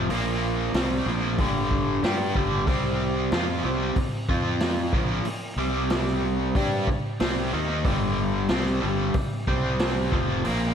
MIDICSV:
0, 0, Header, 1, 6, 480
1, 0, Start_track
1, 0, Tempo, 647249
1, 70, Time_signature, 4, 2, 24, 8
1, 7965, End_track
2, 0, Start_track
2, 0, Title_t, "Overdriven electric guitar"
2, 0, Program_c, 0, 29
2, 70, Note_on_c, 0, 46, 88
2, 79, Note_on_c, 0, 53, 83
2, 80, Note_on_c, 0, 58, 116
2, 541, Note_off_c, 0, 46, 0
2, 545, Note_off_c, 0, 53, 0
2, 546, Note_off_c, 0, 58, 0
2, 554, Note_on_c, 0, 48, 89
2, 562, Note_on_c, 0, 55, 94
2, 562, Note_on_c, 0, 60, 109
2, 782, Note_off_c, 0, 48, 0
2, 787, Note_off_c, 0, 55, 0
2, 787, Note_off_c, 0, 60, 0
2, 798, Note_on_c, 0, 46, 85
2, 799, Note_on_c, 0, 53, 90
2, 807, Note_on_c, 0, 58, 88
2, 1024, Note_off_c, 0, 46, 0
2, 1025, Note_off_c, 0, 53, 0
2, 1026, Note_on_c, 0, 43, 84
2, 1029, Note_off_c, 0, 58, 0
2, 1036, Note_on_c, 0, 50, 86
2, 1038, Note_on_c, 0, 55, 90
2, 1497, Note_off_c, 0, 43, 0
2, 1502, Note_off_c, 0, 50, 0
2, 1503, Note_off_c, 0, 55, 0
2, 1512, Note_on_c, 0, 55, 94
2, 1516, Note_on_c, 0, 62, 97
2, 1524, Note_on_c, 0, 67, 112
2, 1740, Note_off_c, 0, 55, 0
2, 1741, Note_on_c, 0, 43, 77
2, 1742, Note_off_c, 0, 62, 0
2, 1746, Note_off_c, 0, 67, 0
2, 1751, Note_on_c, 0, 55, 102
2, 1752, Note_on_c, 0, 50, 83
2, 1973, Note_off_c, 0, 55, 0
2, 1974, Note_off_c, 0, 43, 0
2, 1974, Note_off_c, 0, 50, 0
2, 1977, Note_on_c, 0, 48, 90
2, 1982, Note_on_c, 0, 55, 85
2, 1992, Note_on_c, 0, 60, 95
2, 2451, Note_off_c, 0, 48, 0
2, 2454, Note_off_c, 0, 55, 0
2, 2458, Note_off_c, 0, 60, 0
2, 2468, Note_on_c, 0, 53, 102
2, 2474, Note_on_c, 0, 60, 88
2, 2480, Note_on_c, 0, 65, 109
2, 2697, Note_off_c, 0, 53, 0
2, 2700, Note_off_c, 0, 60, 0
2, 2702, Note_on_c, 0, 48, 91
2, 2703, Note_off_c, 0, 65, 0
2, 2711, Note_on_c, 0, 55, 89
2, 2711, Note_on_c, 0, 60, 91
2, 2933, Note_off_c, 0, 48, 0
2, 2938, Note_off_c, 0, 55, 0
2, 2938, Note_off_c, 0, 60, 0
2, 3181, Note_on_c, 0, 53, 80
2, 3187, Note_on_c, 0, 60, 87
2, 3190, Note_on_c, 0, 65, 90
2, 3653, Note_off_c, 0, 53, 0
2, 3656, Note_off_c, 0, 60, 0
2, 3657, Note_off_c, 0, 65, 0
2, 3657, Note_on_c, 0, 46, 84
2, 3663, Note_on_c, 0, 53, 100
2, 3664, Note_on_c, 0, 58, 96
2, 3891, Note_off_c, 0, 46, 0
2, 3894, Note_off_c, 0, 53, 0
2, 3894, Note_off_c, 0, 58, 0
2, 4137, Note_on_c, 0, 48, 81
2, 4143, Note_on_c, 0, 55, 85
2, 4146, Note_on_c, 0, 60, 84
2, 4851, Note_off_c, 0, 48, 0
2, 4853, Note_off_c, 0, 55, 0
2, 4856, Note_off_c, 0, 60, 0
2, 4862, Note_on_c, 0, 55, 93
2, 4865, Note_on_c, 0, 62, 86
2, 4870, Note_on_c, 0, 67, 87
2, 5094, Note_off_c, 0, 55, 0
2, 5096, Note_off_c, 0, 62, 0
2, 5098, Note_off_c, 0, 67, 0
2, 5341, Note_on_c, 0, 48, 91
2, 5350, Note_on_c, 0, 55, 96
2, 5353, Note_on_c, 0, 60, 102
2, 5574, Note_off_c, 0, 48, 0
2, 5579, Note_off_c, 0, 55, 0
2, 5580, Note_off_c, 0, 60, 0
2, 5588, Note_on_c, 0, 51, 84
2, 5589, Note_on_c, 0, 58, 98
2, 5596, Note_on_c, 0, 63, 92
2, 5818, Note_off_c, 0, 51, 0
2, 5819, Note_off_c, 0, 58, 0
2, 5822, Note_off_c, 0, 63, 0
2, 5824, Note_on_c, 0, 50, 100
2, 5827, Note_on_c, 0, 43, 97
2, 5830, Note_on_c, 0, 55, 102
2, 6297, Note_off_c, 0, 55, 0
2, 6298, Note_off_c, 0, 50, 0
2, 6299, Note_off_c, 0, 43, 0
2, 6301, Note_on_c, 0, 48, 96
2, 6306, Note_on_c, 0, 55, 92
2, 6313, Note_on_c, 0, 60, 95
2, 6529, Note_on_c, 0, 43, 90
2, 6534, Note_off_c, 0, 48, 0
2, 6535, Note_off_c, 0, 55, 0
2, 6537, Note_on_c, 0, 50, 93
2, 6542, Note_off_c, 0, 60, 0
2, 6544, Note_on_c, 0, 55, 97
2, 6771, Note_off_c, 0, 43, 0
2, 6775, Note_off_c, 0, 50, 0
2, 6778, Note_off_c, 0, 55, 0
2, 7025, Note_on_c, 0, 48, 83
2, 7026, Note_on_c, 0, 55, 88
2, 7032, Note_on_c, 0, 60, 88
2, 7498, Note_off_c, 0, 48, 0
2, 7502, Note_off_c, 0, 55, 0
2, 7503, Note_on_c, 0, 41, 87
2, 7505, Note_off_c, 0, 60, 0
2, 7507, Note_on_c, 0, 48, 95
2, 7512, Note_on_c, 0, 53, 99
2, 7741, Note_off_c, 0, 41, 0
2, 7742, Note_off_c, 0, 53, 0
2, 7743, Note_off_c, 0, 48, 0
2, 7746, Note_on_c, 0, 46, 91
2, 7751, Note_on_c, 0, 53, 95
2, 7758, Note_on_c, 0, 58, 108
2, 7965, Note_off_c, 0, 46, 0
2, 7965, Note_off_c, 0, 53, 0
2, 7965, Note_off_c, 0, 58, 0
2, 7965, End_track
3, 0, Start_track
3, 0, Title_t, "Fingered electric bass"
3, 0, Program_c, 1, 33
3, 73, Note_on_c, 1, 34, 77
3, 520, Note_off_c, 1, 34, 0
3, 548, Note_on_c, 1, 36, 80
3, 770, Note_off_c, 1, 36, 0
3, 786, Note_on_c, 1, 34, 92
3, 1009, Note_off_c, 1, 34, 0
3, 1029, Note_on_c, 1, 31, 78
3, 1476, Note_off_c, 1, 31, 0
3, 1507, Note_on_c, 1, 43, 93
3, 1728, Note_off_c, 1, 43, 0
3, 1747, Note_on_c, 1, 31, 97
3, 1967, Note_off_c, 1, 31, 0
3, 1978, Note_on_c, 1, 36, 75
3, 2429, Note_off_c, 1, 36, 0
3, 2461, Note_on_c, 1, 41, 84
3, 2684, Note_off_c, 1, 41, 0
3, 2697, Note_on_c, 1, 36, 98
3, 2922, Note_off_c, 1, 36, 0
3, 3179, Note_on_c, 1, 41, 83
3, 3629, Note_off_c, 1, 41, 0
3, 3660, Note_on_c, 1, 34, 90
3, 3883, Note_off_c, 1, 34, 0
3, 4125, Note_on_c, 1, 36, 87
3, 4823, Note_off_c, 1, 36, 0
3, 4860, Note_on_c, 1, 43, 89
3, 5083, Note_off_c, 1, 43, 0
3, 5344, Note_on_c, 1, 36, 83
3, 5566, Note_off_c, 1, 36, 0
3, 5588, Note_on_c, 1, 39, 90
3, 5809, Note_off_c, 1, 39, 0
3, 5818, Note_on_c, 1, 31, 82
3, 6272, Note_off_c, 1, 31, 0
3, 6299, Note_on_c, 1, 36, 93
3, 6526, Note_off_c, 1, 36, 0
3, 6552, Note_on_c, 1, 31, 96
3, 6773, Note_off_c, 1, 31, 0
3, 7024, Note_on_c, 1, 36, 84
3, 7479, Note_off_c, 1, 36, 0
3, 7509, Note_on_c, 1, 29, 84
3, 7734, Note_off_c, 1, 29, 0
3, 7769, Note_on_c, 1, 34, 81
3, 7965, Note_off_c, 1, 34, 0
3, 7965, End_track
4, 0, Start_track
4, 0, Title_t, "Muted fingered electric bass strokes"
4, 2939, Note_on_c, 9, 29, 38
4, 3013, Note_off_c, 9, 29, 0
4, 3894, Note_on_c, 9, 29, 32
4, 3968, Note_off_c, 9, 29, 0
4, 5101, Note_on_c, 9, 29, 37
4, 5175, Note_off_c, 9, 29, 0
4, 7965, End_track
5, 0, Start_track
5, 0, Title_t, "Muted overdriven electric guitar strokes"
5, 2952, Note_on_c, 9, 29, 55
5, 3027, Note_off_c, 9, 29, 0
5, 3912, Note_on_c, 9, 29, 55
5, 3986, Note_off_c, 9, 29, 0
5, 5111, Note_on_c, 9, 29, 53
5, 5185, Note_off_c, 9, 29, 0
5, 6779, Note_on_c, 9, 29, 58
5, 6853, Note_off_c, 9, 29, 0
5, 7965, End_track
6, 0, Start_track
6, 0, Title_t, "Drums"
6, 74, Note_on_c, 9, 46, 55
6, 148, Note_off_c, 9, 46, 0
6, 551, Note_on_c, 9, 46, 53
6, 557, Note_on_c, 9, 38, 100
6, 625, Note_off_c, 9, 46, 0
6, 631, Note_off_c, 9, 38, 0
6, 1027, Note_on_c, 9, 46, 46
6, 1028, Note_on_c, 9, 36, 98
6, 1101, Note_off_c, 9, 46, 0
6, 1102, Note_off_c, 9, 36, 0
6, 1267, Note_on_c, 9, 36, 71
6, 1341, Note_off_c, 9, 36, 0
6, 1512, Note_on_c, 9, 46, 55
6, 1518, Note_on_c, 9, 38, 112
6, 1586, Note_off_c, 9, 46, 0
6, 1592, Note_off_c, 9, 38, 0
6, 1744, Note_on_c, 9, 36, 81
6, 1819, Note_off_c, 9, 36, 0
6, 1982, Note_on_c, 9, 36, 99
6, 1983, Note_on_c, 9, 46, 49
6, 2056, Note_off_c, 9, 36, 0
6, 2057, Note_off_c, 9, 46, 0
6, 2459, Note_on_c, 9, 46, 45
6, 2465, Note_on_c, 9, 38, 103
6, 2534, Note_off_c, 9, 46, 0
6, 2539, Note_off_c, 9, 38, 0
6, 2936, Note_on_c, 9, 46, 57
6, 2938, Note_on_c, 9, 36, 108
6, 3010, Note_off_c, 9, 46, 0
6, 3012, Note_off_c, 9, 36, 0
6, 3178, Note_on_c, 9, 36, 89
6, 3252, Note_off_c, 9, 36, 0
6, 3413, Note_on_c, 9, 46, 62
6, 3419, Note_on_c, 9, 38, 116
6, 3487, Note_off_c, 9, 46, 0
6, 3493, Note_off_c, 9, 38, 0
6, 3654, Note_on_c, 9, 36, 98
6, 3728, Note_off_c, 9, 36, 0
6, 3893, Note_on_c, 9, 46, 58
6, 3967, Note_off_c, 9, 46, 0
6, 4375, Note_on_c, 9, 46, 52
6, 4381, Note_on_c, 9, 38, 103
6, 4449, Note_off_c, 9, 46, 0
6, 4455, Note_off_c, 9, 38, 0
6, 4503, Note_on_c, 9, 38, 29
6, 4577, Note_off_c, 9, 38, 0
6, 4858, Note_on_c, 9, 46, 48
6, 4859, Note_on_c, 9, 36, 103
6, 4932, Note_off_c, 9, 46, 0
6, 4933, Note_off_c, 9, 36, 0
6, 5097, Note_on_c, 9, 36, 80
6, 5171, Note_off_c, 9, 36, 0
6, 5339, Note_on_c, 9, 46, 58
6, 5345, Note_on_c, 9, 38, 102
6, 5413, Note_off_c, 9, 46, 0
6, 5419, Note_off_c, 9, 38, 0
6, 5820, Note_on_c, 9, 36, 102
6, 5822, Note_on_c, 9, 46, 48
6, 5894, Note_off_c, 9, 36, 0
6, 5896, Note_off_c, 9, 46, 0
6, 6293, Note_on_c, 9, 46, 45
6, 6299, Note_on_c, 9, 38, 101
6, 6367, Note_off_c, 9, 46, 0
6, 6373, Note_off_c, 9, 38, 0
6, 6421, Note_on_c, 9, 38, 29
6, 6495, Note_off_c, 9, 38, 0
6, 6778, Note_on_c, 9, 46, 53
6, 6782, Note_on_c, 9, 36, 101
6, 6852, Note_off_c, 9, 46, 0
6, 6856, Note_off_c, 9, 36, 0
6, 7025, Note_on_c, 9, 36, 75
6, 7099, Note_off_c, 9, 36, 0
6, 7263, Note_on_c, 9, 46, 59
6, 7269, Note_on_c, 9, 38, 118
6, 7337, Note_off_c, 9, 46, 0
6, 7343, Note_off_c, 9, 38, 0
6, 7506, Note_on_c, 9, 36, 101
6, 7580, Note_off_c, 9, 36, 0
6, 7747, Note_on_c, 9, 46, 55
6, 7822, Note_off_c, 9, 46, 0
6, 7965, End_track
0, 0, End_of_file